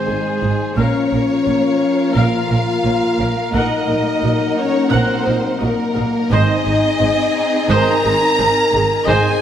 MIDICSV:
0, 0, Header, 1, 10, 480
1, 0, Start_track
1, 0, Tempo, 692042
1, 542, Time_signature, 4, 2, 24, 8
1, 6530, End_track
2, 0, Start_track
2, 0, Title_t, "Violin section"
2, 0, Program_c, 0, 48
2, 58, Note_on_c, 0, 68, 48
2, 539, Note_on_c, 0, 73, 69
2, 540, Note_off_c, 0, 68, 0
2, 1481, Note_off_c, 0, 73, 0
2, 1495, Note_on_c, 0, 77, 73
2, 2457, Note_on_c, 0, 75, 73
2, 2459, Note_off_c, 0, 77, 0
2, 3166, Note_off_c, 0, 75, 0
2, 3182, Note_on_c, 0, 73, 66
2, 3422, Note_off_c, 0, 73, 0
2, 3429, Note_on_c, 0, 72, 69
2, 3896, Note_off_c, 0, 72, 0
2, 3903, Note_on_c, 0, 70, 69
2, 4373, Note_off_c, 0, 70, 0
2, 4380, Note_on_c, 0, 75, 90
2, 5341, Note_off_c, 0, 75, 0
2, 5344, Note_on_c, 0, 82, 104
2, 6303, Note_off_c, 0, 82, 0
2, 6303, Note_on_c, 0, 80, 86
2, 6530, Note_off_c, 0, 80, 0
2, 6530, End_track
3, 0, Start_track
3, 0, Title_t, "Violin section"
3, 0, Program_c, 1, 48
3, 64, Note_on_c, 1, 68, 54
3, 542, Note_on_c, 1, 73, 67
3, 543, Note_off_c, 1, 68, 0
3, 1483, Note_off_c, 1, 73, 0
3, 1505, Note_on_c, 1, 77, 73
3, 2445, Note_off_c, 1, 77, 0
3, 2463, Note_on_c, 1, 75, 69
3, 3169, Note_off_c, 1, 75, 0
3, 3181, Note_on_c, 1, 73, 71
3, 3417, Note_off_c, 1, 73, 0
3, 3424, Note_on_c, 1, 72, 73
3, 3894, Note_off_c, 1, 72, 0
3, 3901, Note_on_c, 1, 70, 73
3, 4372, Note_off_c, 1, 70, 0
3, 4378, Note_on_c, 1, 75, 91
3, 5340, Note_off_c, 1, 75, 0
3, 5345, Note_on_c, 1, 82, 101
3, 6300, Note_on_c, 1, 80, 93
3, 6303, Note_off_c, 1, 82, 0
3, 6530, Note_off_c, 1, 80, 0
3, 6530, End_track
4, 0, Start_track
4, 0, Title_t, "Trumpet"
4, 0, Program_c, 2, 56
4, 0, Note_on_c, 2, 72, 50
4, 515, Note_off_c, 2, 72, 0
4, 538, Note_on_c, 2, 70, 55
4, 4265, Note_off_c, 2, 70, 0
4, 4383, Note_on_c, 2, 72, 64
4, 4550, Note_off_c, 2, 72, 0
4, 5339, Note_on_c, 2, 72, 66
4, 5508, Note_off_c, 2, 72, 0
4, 6292, Note_on_c, 2, 72, 70
4, 6464, Note_off_c, 2, 72, 0
4, 6530, End_track
5, 0, Start_track
5, 0, Title_t, "Viola section"
5, 0, Program_c, 3, 48
5, 53, Note_on_c, 3, 68, 39
5, 55, Note_off_c, 3, 68, 0
5, 55, Note_on_c, 3, 68, 43
5, 110, Note_off_c, 3, 68, 0
5, 291, Note_on_c, 3, 63, 47
5, 296, Note_off_c, 3, 63, 0
5, 296, Note_on_c, 3, 63, 43
5, 351, Note_off_c, 3, 63, 0
5, 532, Note_on_c, 3, 70, 54
5, 532, Note_on_c, 3, 77, 52
5, 760, Note_off_c, 3, 70, 0
5, 760, Note_off_c, 3, 77, 0
5, 768, Note_on_c, 3, 61, 37
5, 771, Note_on_c, 3, 70, 41
5, 823, Note_off_c, 3, 61, 0
5, 827, Note_off_c, 3, 70, 0
5, 1004, Note_on_c, 3, 65, 42
5, 1008, Note_on_c, 3, 73, 36
5, 1059, Note_off_c, 3, 65, 0
5, 1064, Note_off_c, 3, 73, 0
5, 1496, Note_on_c, 3, 70, 58
5, 1497, Note_on_c, 3, 77, 68
5, 1722, Note_off_c, 3, 70, 0
5, 1723, Note_off_c, 3, 77, 0
5, 1730, Note_on_c, 3, 61, 48
5, 1730, Note_on_c, 3, 70, 39
5, 1785, Note_off_c, 3, 61, 0
5, 1785, Note_off_c, 3, 70, 0
5, 1968, Note_on_c, 3, 65, 51
5, 1969, Note_on_c, 3, 73, 49
5, 2024, Note_off_c, 3, 65, 0
5, 2025, Note_off_c, 3, 73, 0
5, 2210, Note_on_c, 3, 61, 53
5, 2211, Note_on_c, 3, 70, 50
5, 2265, Note_off_c, 3, 61, 0
5, 2267, Note_off_c, 3, 70, 0
5, 2455, Note_on_c, 3, 70, 57
5, 2455, Note_on_c, 3, 78, 61
5, 2682, Note_off_c, 3, 70, 0
5, 2682, Note_off_c, 3, 78, 0
5, 2691, Note_on_c, 3, 70, 45
5, 2692, Note_on_c, 3, 63, 40
5, 2747, Note_off_c, 3, 70, 0
5, 2748, Note_off_c, 3, 63, 0
5, 2933, Note_on_c, 3, 66, 46
5, 2934, Note_on_c, 3, 75, 44
5, 2988, Note_off_c, 3, 66, 0
5, 2990, Note_off_c, 3, 75, 0
5, 3410, Note_on_c, 3, 70, 68
5, 3410, Note_on_c, 3, 78, 73
5, 3639, Note_off_c, 3, 70, 0
5, 3639, Note_off_c, 3, 78, 0
5, 3648, Note_on_c, 3, 63, 46
5, 3648, Note_on_c, 3, 70, 54
5, 3703, Note_off_c, 3, 63, 0
5, 3704, Note_off_c, 3, 70, 0
5, 3883, Note_on_c, 3, 66, 61
5, 3886, Note_on_c, 3, 75, 56
5, 3939, Note_off_c, 3, 66, 0
5, 3941, Note_off_c, 3, 75, 0
5, 4129, Note_on_c, 3, 63, 51
5, 4132, Note_on_c, 3, 70, 55
5, 4184, Note_off_c, 3, 63, 0
5, 4188, Note_off_c, 3, 70, 0
5, 4374, Note_on_c, 3, 72, 77
5, 4374, Note_on_c, 3, 75, 77
5, 4601, Note_off_c, 3, 72, 0
5, 4601, Note_off_c, 3, 75, 0
5, 4615, Note_on_c, 3, 63, 48
5, 4617, Note_on_c, 3, 68, 52
5, 4671, Note_off_c, 3, 63, 0
5, 4672, Note_off_c, 3, 68, 0
5, 4853, Note_on_c, 3, 72, 55
5, 4854, Note_on_c, 3, 68, 53
5, 4909, Note_off_c, 3, 68, 0
5, 4909, Note_off_c, 3, 72, 0
5, 5336, Note_on_c, 3, 72, 88
5, 5337, Note_on_c, 3, 75, 87
5, 5562, Note_off_c, 3, 72, 0
5, 5563, Note_off_c, 3, 75, 0
5, 5579, Note_on_c, 3, 68, 62
5, 5580, Note_on_c, 3, 63, 57
5, 5635, Note_off_c, 3, 63, 0
5, 5635, Note_off_c, 3, 68, 0
5, 5813, Note_on_c, 3, 68, 64
5, 5814, Note_on_c, 3, 72, 67
5, 5868, Note_off_c, 3, 68, 0
5, 5870, Note_off_c, 3, 72, 0
5, 6054, Note_on_c, 3, 63, 57
5, 6055, Note_on_c, 3, 68, 58
5, 6110, Note_off_c, 3, 63, 0
5, 6110, Note_off_c, 3, 68, 0
5, 6295, Note_on_c, 3, 75, 79
5, 6299, Note_on_c, 3, 72, 75
5, 6521, Note_off_c, 3, 75, 0
5, 6523, Note_off_c, 3, 72, 0
5, 6530, End_track
6, 0, Start_track
6, 0, Title_t, "String section"
6, 0, Program_c, 4, 48
6, 0, Note_on_c, 4, 56, 59
6, 0, Note_on_c, 4, 63, 57
6, 0, Note_on_c, 4, 68, 62
6, 0, Note_on_c, 4, 80, 59
6, 514, Note_off_c, 4, 63, 0
6, 514, Note_off_c, 4, 68, 0
6, 515, Note_off_c, 4, 80, 0
6, 517, Note_off_c, 4, 56, 0
6, 539, Note_on_c, 4, 77, 64
6, 541, Note_on_c, 4, 65, 66
6, 541, Note_on_c, 4, 70, 63
6, 544, Note_on_c, 4, 58, 61
6, 2460, Note_on_c, 4, 63, 71
6, 2461, Note_off_c, 4, 77, 0
6, 2462, Note_off_c, 4, 65, 0
6, 2463, Note_on_c, 4, 78, 69
6, 4373, Note_off_c, 4, 63, 0
6, 4380, Note_on_c, 4, 80, 76
6, 4381, Note_on_c, 4, 60, 81
6, 4381, Note_on_c, 4, 68, 80
6, 4382, Note_off_c, 4, 70, 0
6, 4382, Note_on_c, 4, 63, 83
6, 4383, Note_off_c, 4, 58, 0
6, 4383, Note_off_c, 4, 78, 0
6, 6274, Note_off_c, 4, 63, 0
6, 6287, Note_off_c, 4, 68, 0
6, 6290, Note_off_c, 4, 60, 0
6, 6291, Note_off_c, 4, 80, 0
6, 6296, Note_on_c, 4, 68, 90
6, 6299, Note_on_c, 4, 60, 91
6, 6300, Note_on_c, 4, 63, 85
6, 6300, Note_on_c, 4, 80, 94
6, 6530, Note_off_c, 4, 60, 0
6, 6530, Note_off_c, 4, 63, 0
6, 6530, Note_off_c, 4, 68, 0
6, 6530, Note_off_c, 4, 80, 0
6, 6530, End_track
7, 0, Start_track
7, 0, Title_t, "French horn section"
7, 0, Program_c, 5, 60
7, 59, Note_on_c, 5, 56, 65
7, 535, Note_on_c, 5, 61, 69
7, 540, Note_off_c, 5, 56, 0
7, 1479, Note_off_c, 5, 61, 0
7, 1500, Note_on_c, 5, 65, 77
7, 2343, Note_off_c, 5, 65, 0
7, 2460, Note_on_c, 5, 63, 76
7, 3167, Note_off_c, 5, 63, 0
7, 3184, Note_on_c, 5, 61, 72
7, 3419, Note_off_c, 5, 61, 0
7, 3434, Note_on_c, 5, 60, 77
7, 3908, Note_off_c, 5, 60, 0
7, 3910, Note_on_c, 5, 58, 79
7, 4380, Note_on_c, 5, 63, 90
7, 4386, Note_off_c, 5, 58, 0
7, 5341, Note_off_c, 5, 63, 0
7, 5350, Note_on_c, 5, 70, 101
7, 6287, Note_off_c, 5, 70, 0
7, 6301, Note_on_c, 5, 68, 90
7, 6530, Note_off_c, 5, 68, 0
7, 6530, End_track
8, 0, Start_track
8, 0, Title_t, "Trombone section"
8, 0, Program_c, 6, 61
8, 0, Note_on_c, 6, 51, 51
8, 0, Note_on_c, 6, 56, 49
8, 512, Note_off_c, 6, 51, 0
8, 512, Note_off_c, 6, 56, 0
8, 536, Note_on_c, 6, 53, 53
8, 542, Note_on_c, 6, 58, 55
8, 2342, Note_off_c, 6, 53, 0
8, 2460, Note_on_c, 6, 54, 61
8, 4354, Note_off_c, 6, 54, 0
8, 4355, Note_off_c, 6, 58, 0
8, 4378, Note_on_c, 6, 51, 58
8, 4378, Note_on_c, 6, 56, 59
8, 4548, Note_off_c, 6, 51, 0
8, 4548, Note_off_c, 6, 56, 0
8, 5338, Note_on_c, 6, 51, 68
8, 5338, Note_on_c, 6, 56, 67
8, 5507, Note_off_c, 6, 56, 0
8, 5508, Note_off_c, 6, 51, 0
8, 6305, Note_on_c, 6, 56, 69
8, 6308, Note_on_c, 6, 51, 66
8, 6471, Note_off_c, 6, 56, 0
8, 6473, Note_off_c, 6, 51, 0
8, 6530, End_track
9, 0, Start_track
9, 0, Title_t, "Cello section"
9, 0, Program_c, 7, 48
9, 56, Note_on_c, 7, 44, 36
9, 112, Note_off_c, 7, 44, 0
9, 299, Note_on_c, 7, 44, 41
9, 355, Note_off_c, 7, 44, 0
9, 535, Note_on_c, 7, 46, 60
9, 591, Note_off_c, 7, 46, 0
9, 782, Note_on_c, 7, 46, 40
9, 837, Note_off_c, 7, 46, 0
9, 1020, Note_on_c, 7, 46, 44
9, 1075, Note_off_c, 7, 46, 0
9, 1498, Note_on_c, 7, 46, 64
9, 1553, Note_off_c, 7, 46, 0
9, 1738, Note_on_c, 7, 46, 45
9, 1793, Note_off_c, 7, 46, 0
9, 1979, Note_on_c, 7, 46, 44
9, 2034, Note_off_c, 7, 46, 0
9, 2216, Note_on_c, 7, 46, 46
9, 2271, Note_off_c, 7, 46, 0
9, 2452, Note_on_c, 7, 46, 63
9, 2508, Note_off_c, 7, 46, 0
9, 2692, Note_on_c, 7, 46, 42
9, 2748, Note_off_c, 7, 46, 0
9, 2930, Note_on_c, 7, 46, 48
9, 2986, Note_off_c, 7, 46, 0
9, 3409, Note_on_c, 7, 46, 73
9, 3465, Note_off_c, 7, 46, 0
9, 3651, Note_on_c, 7, 46, 49
9, 3707, Note_off_c, 7, 46, 0
9, 3895, Note_on_c, 7, 46, 51
9, 3950, Note_off_c, 7, 46, 0
9, 4133, Note_on_c, 7, 46, 52
9, 4188, Note_off_c, 7, 46, 0
9, 4372, Note_on_c, 7, 44, 76
9, 4427, Note_off_c, 7, 44, 0
9, 4615, Note_on_c, 7, 44, 53
9, 4670, Note_off_c, 7, 44, 0
9, 4852, Note_on_c, 7, 44, 60
9, 4908, Note_off_c, 7, 44, 0
9, 5335, Note_on_c, 7, 44, 79
9, 5391, Note_off_c, 7, 44, 0
9, 5578, Note_on_c, 7, 44, 57
9, 5634, Note_off_c, 7, 44, 0
9, 5814, Note_on_c, 7, 44, 58
9, 5869, Note_off_c, 7, 44, 0
9, 6051, Note_on_c, 7, 44, 61
9, 6106, Note_off_c, 7, 44, 0
9, 6292, Note_on_c, 7, 44, 86
9, 6348, Note_off_c, 7, 44, 0
9, 6530, End_track
10, 0, Start_track
10, 0, Title_t, "Double bass section"
10, 0, Program_c, 8, 48
10, 61, Note_on_c, 8, 32, 38
10, 117, Note_off_c, 8, 32, 0
10, 301, Note_on_c, 8, 32, 40
10, 356, Note_off_c, 8, 32, 0
10, 539, Note_on_c, 8, 34, 54
10, 595, Note_off_c, 8, 34, 0
10, 782, Note_on_c, 8, 34, 44
10, 838, Note_off_c, 8, 34, 0
10, 1023, Note_on_c, 8, 34, 39
10, 1078, Note_off_c, 8, 34, 0
10, 1500, Note_on_c, 8, 34, 59
10, 1556, Note_off_c, 8, 34, 0
10, 1735, Note_on_c, 8, 34, 45
10, 1790, Note_off_c, 8, 34, 0
10, 1978, Note_on_c, 8, 34, 45
10, 2034, Note_off_c, 8, 34, 0
10, 2220, Note_on_c, 8, 34, 43
10, 2275, Note_off_c, 8, 34, 0
10, 2456, Note_on_c, 8, 34, 65
10, 2512, Note_off_c, 8, 34, 0
10, 2698, Note_on_c, 8, 34, 46
10, 2754, Note_off_c, 8, 34, 0
10, 2939, Note_on_c, 8, 34, 44
10, 2994, Note_off_c, 8, 34, 0
10, 3424, Note_on_c, 8, 34, 74
10, 3479, Note_off_c, 8, 34, 0
10, 3660, Note_on_c, 8, 34, 48
10, 3715, Note_off_c, 8, 34, 0
10, 3904, Note_on_c, 8, 34, 48
10, 3959, Note_off_c, 8, 34, 0
10, 4141, Note_on_c, 8, 34, 50
10, 4197, Note_off_c, 8, 34, 0
10, 4384, Note_on_c, 8, 32, 73
10, 4439, Note_off_c, 8, 32, 0
10, 4625, Note_on_c, 8, 32, 53
10, 4681, Note_off_c, 8, 32, 0
10, 4864, Note_on_c, 8, 32, 53
10, 4920, Note_off_c, 8, 32, 0
10, 5343, Note_on_c, 8, 32, 83
10, 5399, Note_off_c, 8, 32, 0
10, 5587, Note_on_c, 8, 32, 56
10, 5642, Note_off_c, 8, 32, 0
10, 5824, Note_on_c, 8, 32, 57
10, 5880, Note_off_c, 8, 32, 0
10, 6064, Note_on_c, 8, 32, 56
10, 6119, Note_off_c, 8, 32, 0
10, 6303, Note_on_c, 8, 32, 86
10, 6359, Note_off_c, 8, 32, 0
10, 6530, End_track
0, 0, End_of_file